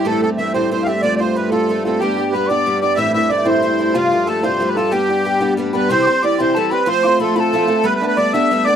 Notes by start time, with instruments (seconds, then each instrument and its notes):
Already playing: harmonium G2 G3
0.05 steel-string acoustic guitar A2 E3 A3 C4 G4, accordion A4
0.23 steel-string acoustic guitar A3 C4 G4, accordion A4
0.38 steel-string acoustic guitar E3 A3 C4 G4, accordion E5
0.54 steel-string acoustic guitar A2 E3 A3 C4 G4, accordion C5
0.71 steel-string acoustic guitar E3 A3 C4 G4, accordion C5
0.83 steel-string acoustic guitar G4, accordion E5 F5
0.88 steel-string acoustic guitar A3 C4
1.02 steel-string acoustic guitar F3 A3 C4 F4, accordion D5
1.16 accordion C5 D5
1.20 steel-string acoustic guitar A3 C4 F4
1.35 steel-string acoustic guitar F3 A3 C4 F4, accordion B4
1.50 steel-string acoustic guitar F3 A3 C4 F4, accordion A4
1.69 steel-string acoustic guitar F3 A3 C4 F4
1.85 steel-string acoustic guitar A3 C4 F4, accordion A4
1.99 harmonium G2 G3, steel-string acoustic guitar G3 B3 D4 G4, accordion G4, tin whistle G5
2.17 steel-string acoustic guitar B3 D4 G4
2.32 steel-string acoustic guitar G3 B3 D4, accordion B4, tin whistle B5
2.36 steel-string acoustic guitar G4
2.48 steel-string acoustic guitar G3 B3 D4 G4, accordion D5, tin whistle D6
2.66 steel-string acoustic guitar G3 B3 D4 G4
2.81 steel-string acoustic guitar B3 D4 G4, accordion D5, tin whistle D6
2.96 steel-string acoustic guitar A2 E3 A3 C4 E4, accordion E5, tin whistle E6
3.13 steel-string acoustic guitar A3 C4 E4, accordion E5, tin whistle E6
3.30 steel-string acoustic guitar E3 A3 C4 E4, accordion D5, tin whistle D6
3.45 steel-string acoustic guitar A2 E3 A3 C4 E4, accordion C5, tin whistle D6
3.50 tin whistle C6
3.62 steel-string acoustic guitar E3 A3 C4 E4
3.79 steel-string acoustic guitar A3 C4 E4
3.93 steel-string acoustic guitar F2 C3 F3 G3 A3 F4, accordion F4, tin whistle F5
4.11 steel-string acoustic guitar F3 G3 A3 F4
4.26 steel-string acoustic guitar F3 G3 A3 F4, accordion A4, tin whistle A5
4.42 steel-string acoustic guitar F2 C3 F3 G3 A3 F4, accordion C5, tin whistle C6
4.60 steel-string acoustic guitar F3 G3 A3 F4
4.67 accordion B4, tin whistle B5
4.75 steel-string acoustic guitar F3 G3 A3 F4, accordion A4, tin whistle A5
4.91 steel-string acoustic guitar G3 B3 D4 G4, accordion G4, tin whistle G5
5.09 steel-string acoustic guitar B3 D4 G4
5.25 steel-string acoustic guitar G3 B3 D4 G4
5.41 steel-string acoustic guitar G3 B3 D4 G4
5.57 steel-string acoustic guitar G3 B3 D4 G4
5.73 steel-string acoustic guitar B3 D4 G4, accordion B4, tin whistle B5
5.89 steel-string acoustic guitar C3 E3 G3 C4 G4, accordion C5, tin whistle C6
6.02 tin whistle D6
6.06 steel-string acoustic guitar G3 C4 G4, tin whistle C6
6.23 steel-string acoustic guitar E3 G3 C4 G4, accordion D5, tin whistle D6
6.38 steel-string acoustic guitar C3 E3 G3 C4 G4, accordion C5, tin whistle C6
6.55 steel-string acoustic guitar E3 G3 C4 G4, accordion A4, tin whistle A5
6.71 steel-string acoustic guitar G3 C4 G4, accordion B4, tin whistle B5
6.86 steel-string acoustic guitar F3 A3 C4 F4, accordion C5, tin whistle C6
7.03 steel-string acoustic guitar A3 C4 F4, tin whistle C6 D6
7.19 steel-string acoustic guitar F3 A3 C4 F4, accordion A4, tin whistle B5
7.24 tin whistle C6
7.36 steel-string acoustic guitar F3 A3 C4 F4, accordion A4, tin whistle B5
7.40 tin whistle A5
7.53 steel-string acoustic guitar F3 A3 C4 F4
7.67 steel-string acoustic guitar A3 C4 F4
7.84 steel-string acoustic guitar G3 A3 B3 D4, accordion B4, tin whistle B5
7.95 accordion B4
8.01 steel-string acoustic guitar A3 B3 D4
8.07 accordion B4, tin whistle B5
8.17 steel-string acoustic guitar G3 A3 B3 D4, accordion D5, tin whistle D6
8.33 steel-string acoustic guitar G3 A3 B3 D4, accordion E5, tin whistle E6
8.51 steel-string acoustic guitar G3 A3 B3 D4
8.65 steel-string acoustic guitar A3 D4, accordion D5, tin whistle D6
8.69 steel-string acoustic guitar B3